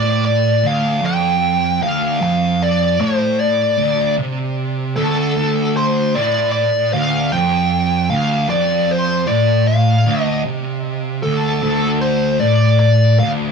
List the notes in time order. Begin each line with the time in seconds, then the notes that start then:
Already playing: A2 D5
0.25 D5
0.63 D2 F5
1.01 F2
1.06 G5
1.81 D2 F5
2.21 F2 F5
2.62 D5
3.00 A2 C5
3.40 D5
3.78 D2
4.18 C3
4.96 D2 A4
5.36 D2
5.77 C5
6.15 A2 D5
6.52 D5
6.93 D2 F5
7.32 F2 G5
8.10 D2 F5
8.49 F2 D5
8.91 C5
9.27 A2 D5
9.67 F5
10.06 D2
10.21 D#5
10.45 C3
11.23 D2 A4
11.62 D2
12.01 C5
12.40 A2 D5
12.79 D5
13.19 D2 F5